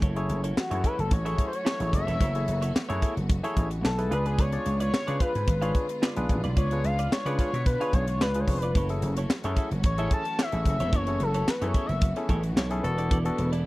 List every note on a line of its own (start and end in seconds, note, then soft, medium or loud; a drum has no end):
0.02 0.25 F#1 loud
0.02 4.07 E3 medium
0.02 4.07 F#3 medium
0.02 4.08 A3 medium
0.02 2.18 C#4 medium
0.02 0.20 E4 loud
0.02 4.08 F#4 medium
0.02 0.16 A4 medium
0.02 0.16 C#5 medium
0.02 kick loud
0.02 closed hi-hat medium
0.16 0.40 E4 medium
0.16 0.41 G#4 medium
0.16 0.41 A4 medium
0.16 0.41 C#5 loud
0.16 muted clean electric guitar stroke soft
0.16 closed hi-hat soft
0.29 0.52 F#1 loud
0.29 muted clean electric guitar stroke soft
0.29 closed hi-hat medium
0.44 0.56 E4 medium
0.44 0.56 A4 medium
0.44 0.57 C#5 medium
0.44 closed hi-hat medium
0.57 0.87 F#4 medium
0.57 muted slap bass stroke soft
0.57 muted clean electric guitar stroke soft
0.57 snare loud
0.57 clap medium
0.70 0.82 F#2 loud
0.70 0.95 E4 medium
0.70 0.83 E4 medium
0.70 0.95 G#4 medium
0.70 0.95 A4 medium
0.70 0.83 A4 medium
0.70 0.95 C#5 medium
0.70 0.85 C#5 medium
0.70 closed hi-hat medium
0.84 0.98 E4 medium
0.84 0.98 A4 medium
0.84 0.99 B4 medium
0.84 0.98 E5 medium
0.84 kick medium
0.84 closed hi-hat medium
0.98 1.09 F#1 medium
0.98 1.11 A4 medium
0.98 muted clean electric guitar stroke soft
0.98 closed hi-hat soft
1.11 1.34 A1 loud
1.11 1.44 C#5 medium
1.11 muted clean electric guitar stroke soft
1.11 kick loud
1.11 closed hi-hat medium
1.25 1.49 E4 medium
1.25 1.37 E4 medium
1.25 1.50 G#4 medium
1.25 1.50 A4 medium
1.25 1.37 A4 medium
1.25 1.50 C#5 medium
1.25 1.38 E5 medium
1.25 closed hi-hat medium
1.38 muted clean electric guitar stroke soft
1.38 kick medium
1.38 closed hi-hat medium
1.48 1.56 C5 medium
1.52 1.94 C#5 loud
1.52 muted clean electric guitar stroke soft
1.52 closed hi-hat medium
1.65 1.83 E4 medium
1.65 1.79 A4 medium
1.65 1.79 C#5 medium
1.65 snare loud
1.65 clap medium
1.80 1.91 A1 loud
1.80 2.04 E4 medium
1.80 2.04 G#4 medium
1.80 2.04 A4 medium
1.80 2.05 C#5 medium
1.80 muted clean electric guitar stroke soft
1.80 closed hi-hat medium
1.93 2.05 F#1 medium
1.93 2.72 E5 loud
1.93 muted clean electric guitar stroke soft
1.93 kick medium
1.93 closed hi-hat medium
2.07 2.18 E1 medium
2.07 2.19 E4 soft
2.07 2.20 A4 medium
2.07 2.20 C#5 medium
2.07 closed hi-hat soft
2.20 2.43 F#1 loud
2.20 8.71 B3 medium
2.20 2.38 E4 medium
2.20 2.34 A4 medium
2.20 2.33 C#5 loud
2.20 kick loud
2.20 closed hi-hat medium
2.35 2.59 E4 medium
2.35 2.59 G#4 medium
2.35 2.59 A4 medium
2.35 2.59 C#5 medium
2.35 muted clean electric guitar stroke soft
2.35 closed hi-hat soft
2.48 2.70 F#1 loud
2.48 muted clean electric guitar stroke soft
2.48 closed hi-hat medium
2.62 2.74 E4 medium
2.62 2.74 A4 medium
2.62 2.75 C#5 medium
2.62 closed hi-hat medium
2.75 muted clean electric guitar stroke soft
2.75 muted slap bass stroke soft
2.75 snare loud
2.75 clap medium
2.89 3.00 F#2 loud
2.89 3.13 E4 loud
2.89 3.00 E4 medium
2.89 3.13 G#4 loud
2.89 3.01 A4 medium
2.89 3.14 A4 medium
2.89 3.02 C#5 medium
2.89 3.14 C#5 loud
2.89 closed hi-hat medium
3.01 3.16 E4 medium
3.01 3.16 A4 medium
3.01 3.16 E5 medium
3.01 kick medium
3.01 closed hi-hat medium
3.16 3.39 F#1 medium
3.16 muted clean electric guitar stroke soft
3.16 closed hi-hat soft
3.29 muted clean electric guitar stroke soft
3.29 kick loud
3.29 closed hi-hat medium
3.43 3.68 E4 medium
3.43 3.55 E4 medium
3.43 3.68 G#4 medium
3.43 3.68 A4 medium
3.43 3.55 A4 medium
3.43 3.68 C#5 loud
3.43 3.57 E5 medium
3.43 closed hi-hat medium
3.56 3.79 A1 medium
3.56 muted clean electric guitar stroke soft
3.56 kick medium
3.56 closed hi-hat medium
3.70 muted clean electric guitar stroke soft
3.70 closed hi-hat medium
3.83 4.06 B1 medium
3.83 4.14 A4 medium
3.83 muted clean electric guitar stroke soft
3.83 snare loud
3.83 clap medium
3.98 4.11 E4 medium
3.98 4.10 G#4 medium
3.98 4.11 A4 medium
3.98 4.10 B4 medium
3.98 muted clean electric guitar stroke soft
3.98 closed hi-hat medium
4.10 4.56 C#2 medium
4.10 6.28 C#3 medium
4.10 8.71 D3 medium
4.10 8.71 G#3 medium
4.10 4.44 D4 medium
4.10 4.44 F4 medium
4.10 8.71 F4 medium
4.10 4.25 F4 medium
4.10 4.44 G#4 medium
4.10 4.44 B4 medium
4.10 4.25 B4 medium
4.10 4.26 B4 loud
4.10 4.24 D5 medium
4.10 closed hi-hat medium
4.25 4.37 F4 medium
4.25 4.41 G#4 loud
4.25 4.38 B4 medium
4.25 4.38 D5 medium
4.25 closed hi-hat soft
4.38 4.56 F4 medium
4.38 4.53 B4 medium
4.38 4.80 C#5 loud
4.38 4.52 D5 medium
4.38 kick loud
4.38 closed hi-hat medium
4.52 4.77 D4 medium
4.52 4.77 F4 medium
4.52 4.77 G#4 medium
4.52 4.77 D5 medium
4.52 closed hi-hat soft
4.66 4.88 C#2 loud
4.66 muted clean electric guitar stroke soft
4.66 closed hi-hat medium
4.80 4.92 F4 medium
4.80 4.92 B4 medium
4.80 5.22 C#5 loud
4.80 4.93 D5 medium
4.80 closed hi-hat medium
4.93 muted clean electric guitar stroke soft
4.93 muted slap bass stroke soft
4.93 snare loud
4.93 clap medium
5.07 5.18 C#3 loud
5.07 5.31 D4 medium
5.07 5.31 F4 medium
5.07 5.19 F4 medium
5.07 5.32 G#4 medium
5.07 5.32 B4 medium
5.07 5.20 B4 medium
5.07 5.21 D5 medium
5.07 closed hi-hat medium
5.20 5.35 F4 medium
5.20 6.02 B4 loud
5.20 5.34 B4 medium
5.20 5.34 F5 medium
5.20 kick loud
5.20 closed hi-hat medium
5.35 5.46 G#2 medium
5.35 muted clean electric guitar stroke soft
5.35 closed hi-hat medium
5.47 5.70 G#1 loud
5.47 muted clean electric guitar stroke soft
5.47 kick loud
5.47 closed hi-hat medium
5.62 5.86 D4 medium
5.62 5.86 F4 medium
5.62 5.74 F4 medium
5.62 5.86 G#4 medium
5.62 5.74 B4 medium
5.62 5.86 C#5 medium
5.62 5.75 F5 medium
5.62 closed hi-hat medium
5.75 muted clean electric guitar stroke soft
5.75 kick medium
5.75 closed hi-hat medium
5.89 muted clean electric guitar stroke soft
5.89 closed hi-hat medium
6.02 6.20 F4 medium
6.02 6.16 B4 medium
6.02 6.15 D5 medium
6.02 snare loud
6.02 clap loud
6.16 6.27 B1 medium
6.16 6.41 D4 loud
6.16 6.41 F4 medium
6.16 6.41 G#4 medium
6.16 6.41 B4 loud
6.16 muted clean electric guitar stroke soft
6.16 closed hi-hat medium
6.29 6.41 A1 medium
6.29 8.73 D4 medium
6.29 muted clean electric guitar stroke soft
6.29 kick medium
6.29 closed hi-hat medium
6.44 6.57 B1 medium
6.44 6.55 F4 soft
6.44 6.56 B4 medium
6.44 6.56 D5 medium
6.44 closed hi-hat medium
6.56 6.79 C#2 loud
6.56 6.74 F4 medium
6.56 6.72 B4 medium
6.56 6.86 C#5 loud
6.56 6.71 D5 medium
6.56 kick loud
6.56 closed hi-hat medium
6.71 6.95 D4 medium
6.71 6.96 F4 medium
6.71 6.96 G#4 medium
6.71 6.96 B4 medium
6.71 muted clean electric guitar stroke soft
6.71 closed hi-hat soft
6.84 7.06 C#2 loud
6.84 7.12 F5 loud
6.84 muted clean electric guitar stroke soft
6.84 closed hi-hat medium
6.99 7.10 F4 medium
6.99 7.11 B4 medium
6.99 7.11 D5 medium
6.99 closed hi-hat medium
7.11 7.37 C#5 medium
7.11 muted slap bass stroke medium
7.11 muted clean electric guitar stroke soft
7.11 snare loud
7.11 clap medium
7.26 7.36 C#3 loud
7.26 7.50 D4 medium
7.26 7.50 F4 medium
7.26 7.38 F4 medium
7.26 7.50 G#4 medium
7.26 7.38 B4 medium
7.26 7.50 B4 medium
7.26 7.40 D5 medium
7.26 closed hi-hat medium
7.39 7.53 F4 medium
7.39 7.53 B4 medium
7.39 7.65 C#5 medium
7.39 7.54 F5 medium
7.39 kick medium
7.39 closed hi-hat medium
7.53 7.76 B2 medium
7.53 closed hi-hat medium
7.66 7.95 B4 medium
7.66 muted clean electric guitar stroke soft
7.66 kick loud
7.66 closed hi-hat medium
7.80 8.04 D4 medium
7.80 8.04 F4 medium
7.80 7.92 F4 medium
7.80 8.05 G#4 medium
7.80 7.93 B4 medium
7.80 8.05 C#5 loud
7.80 7.94 F5 medium
7.80 closed hi-hat medium
7.93 8.16 B1 medium
7.93 8.23 C#5 medium
7.93 kick medium
7.93 closed hi-hat medium
8.07 muted clean electric guitar stroke soft
8.07 closed hi-hat medium
8.21 8.43 C#2 medium
8.21 8.39 F4 medium
8.21 8.41 B4 loud
8.21 8.35 B4 loud
8.21 8.34 D5 medium
8.21 snare loud
8.21 clap medium
8.34 8.59 D4 medium
8.34 8.59 F4 medium
8.34 8.59 G#4 medium
8.34 8.59 B4 medium
8.34 muted clean electric guitar stroke medium
8.34 closed hi-hat medium
8.39 8.59 C#5 medium
8.48 8.70 F1 medium
8.48 muted clean electric guitar stroke soft
8.48 kick medium
8.48 open hi-hat medium
8.58 8.85 B4 medium
8.62 8.75 F4 medium
8.62 8.76 B4 medium
8.62 8.75 D5 medium
8.62 closed hi-hat soft
8.75 8.98 F#1 loud
8.75 13.66 E3 medium
8.75 12.80 F#3 medium
8.75 13.66 A3 medium
8.75 10.92 C#4 medium
8.75 8.93 E4 medium
8.75 12.81 F#4 medium
8.75 8.90 A4 medium
8.75 8.89 C#5 loud
8.75 kick loud
8.75 closed hi-hat medium
8.89 9.14 C#4 medium
8.89 9.14 E4 medium
8.89 9.14 G#4 medium
8.89 9.14 A4 medium
8.89 muted clean electric guitar stroke medium
8.89 closed hi-hat soft
9.02 9.25 F#1 loud
9.02 muted clean electric guitar stroke soft
9.02 closed hi-hat medium
9.17 9.29 E4 medium
9.17 9.30 A4 medium
9.17 9.30 C#5 medium
9.17 closed hi-hat medium
9.30 muted slap bass stroke soft
9.30 snare loud
9.30 clap loud
9.44 9.55 F#2 loud
9.44 9.68 C#4 medium
9.44 9.68 E4 medium
9.44 9.56 E4 medium
9.44 9.68 G#4 medium
9.44 9.69 A4 loud
9.44 9.57 A4 medium
9.44 9.58 C#5 medium
9.44 closed hi-hat medium
9.57 9.71 E4 medium
9.57 9.72 A4 medium
9.57 9.72 E5 medium
9.57 kick medium
9.57 closed hi-hat medium
9.71 9.84 F#1 medium
9.71 muted clean electric guitar stroke soft
9.71 closed hi-hat medium
9.84 10.06 A1 loud
9.84 10.10 C#5 loud
9.84 muted clean electric guitar stroke soft
9.84 kick loud
9.84 closed hi-hat medium
9.98 10.22 C#4 medium
9.98 10.22 E4 medium
9.98 10.11 E4 medium
9.98 10.22 G#4 medium
9.98 10.23 A4 loud
9.98 10.11 A4 medium
9.98 10.12 E5 loud
9.98 closed hi-hat medium
10.11 10.43 A5 loud
10.11 muted clean electric guitar stroke medium
10.11 kick loud
10.11 closed hi-hat medium
10.25 muted clean electric guitar stroke soft
10.25 closed hi-hat medium
10.39 10.56 E4 medium
10.39 10.53 A4 medium
10.39 10.52 C#5 medium
10.39 10.67 E5 loud
10.39 snare loud
10.39 clap medium
10.52 10.63 A1 medium
10.52 10.77 C#4 medium
10.52 10.77 E4 medium
10.52 10.77 G#4 medium
10.52 10.77 A4 medium
10.52 muted clean electric guitar stroke medium
10.52 closed hi-hat medium
10.65 10.78 F#1 medium
10.65 10.97 E5 loud
10.65 muted clean electric guitar stroke soft
10.65 kick medium
10.65 closed hi-hat medium
10.80 10.93 E1 medium
10.80 10.91 E4 medium
10.80 10.92 A4 medium
10.80 10.93 C#5 medium
10.80 closed hi-hat medium
10.93 11.15 F#1 loud
10.93 13.66 B3 medium
10.93 11.11 E4 medium
10.93 11.07 A4 medium
10.93 11.06 C#5 loud
10.93 11.24 C#5 loud
10.93 kick loud
10.93 closed hi-hat medium
11.07 11.32 C#4 medium
11.07 11.32 E4 medium
11.07 11.32 G#4 medium
11.07 11.32 A4 medium
11.07 muted clean electric guitar stroke medium
11.07 closed hi-hat soft
11.20 11.43 F#1 medium
11.20 11.51 A4 loud
11.20 muted clean electric guitar stroke soft
11.20 closed hi-hat medium
11.34 11.47 E4 medium
11.34 11.47 A4 medium
11.34 11.47 C#5 medium
11.34 closed hi-hat medium
11.47 11.67 B4 medium
11.47 muted slap bass stroke medium
11.47 snare loud
11.47 clap medium
11.61 11.72 F#2 loud
11.61 11.86 C#4 medium
11.61 11.86 E4 medium
11.61 11.73 E4 medium
11.61 11.86 G#4 medium
11.61 11.86 A4 medium
11.61 11.74 A4 medium
11.61 11.75 C#5 medium
11.61 closed hi-hat medium
11.67 11.87 C#5 medium
11.74 11.89 E4 medium
11.74 11.89 A4 medium
11.74 11.89 E5 medium
11.74 kick medium
11.74 closed hi-hat medium
11.86 12.12 F#1 medium
11.86 12.12 E5 medium
11.86 muted clean electric guitar stroke medium
11.86 closed hi-hat soft
12.01 muted clean electric guitar stroke soft
12.01 kick loud
12.01 closed hi-hat medium
12.16 12.41 C#4 medium
12.16 12.41 E4 medium
12.16 12.41 G#4 medium
12.16 12.41 A4 medium
12.16 muted clean electric guitar stroke soft
12.16 closed hi-hat medium
12.29 12.52 A1 medium
12.29 12.47 E4 medium
12.29 12.44 A4 medium
12.29 12.43 C#5 loud
12.29 kick medium
12.29 closed hi-hat medium
12.43 muted clean electric guitar stroke soft
12.43 closed hi-hat medium
12.56 12.79 B1 medium
12.56 12.74 E4 medium
12.56 12.71 A4 medium
12.56 12.70 C#5 loud
12.56 snare loud
12.56 clap medium
12.70 12.84 C#4 loud
12.70 12.84 E4 medium
12.70 12.84 G#4 medium
12.70 12.83 A4 loud
12.70 muted clean electric guitar stroke soft
12.70 closed hi-hat medium
12.83 13.29 E1 loud
12.83 13.66 D3 medium
12.83 13.17 B3 loud
12.83 13.17 D4 medium
12.83 13.66 E4 medium
12.83 13.17 F#4 medium
12.83 13.17 A4 loud
12.83 muted clean electric guitar stroke soft
12.83 closed hi-hat medium
12.98 13.10 E4 medium
12.98 13.10 A4 soft
12.98 13.11 D5 medium
12.98 closed hi-hat medium
13.11 13.29 E4 medium
13.11 13.25 A4 medium
13.11 13.24 D5 loud
13.11 kick loud
13.11 closed hi-hat medium
13.25 13.49 B3 medium
13.25 13.50 D4 medium
13.25 13.50 F#4 medium
13.25 13.50 A4 loud
13.25 muted clean electric guitar stroke soft
13.25 closed hi-hat soft
13.38 13.61 E1 loud
13.38 muted clean electric guitar stroke soft
13.38 closed hi-hat medium
13.53 13.64 E4 medium
13.53 13.64 A4 medium
13.53 13.65 D5 medium
13.53 closed hi-hat medium